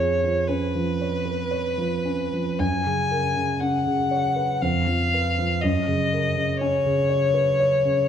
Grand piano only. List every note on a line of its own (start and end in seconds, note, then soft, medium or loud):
0.00 2.56 F2 soft
0.00 0.13 F3 soft
0.00 0.39 G#4 soft
0.24 0.64 F3 soft
0.49 0.90 C#4 soft
0.75 1.15 F3 soft
1.01 1.42 C#5 soft
1.25 1.51 B4 soft
1.51 1.94 C#5 soft
1.78 2.22 F3 soft
2.05 2.49 C#4 soft
2.33 2.60 F3 soft
2.59 4.57 F#2 soft
2.86 3.26 C#3 soft
3.11 3.51 A#4 soft
3.36 3.76 C#3 soft
3.61 4.01 C#4 soft
3.87 4.27 C#3 soft
4.11 4.51 C#5 soft
4.36 4.61 B4 soft
4.62 5.59 F2 soft
4.87 5.27 F3 soft
5.14 5.53 B4 soft
5.38 5.63 F3 soft
5.64 8.08 F#2 soft
5.87 6.27 C#3 soft
6.13 6.53 A#4 soft
6.37 6.77 C#3 soft
6.61 7.01 C#4 soft
6.86 7.25 C#3 soft
7.10 7.50 C#5 soft
7.34 7.59 B4 soft
7.60 8.00 C#5 soft
7.85 8.08 C#3 soft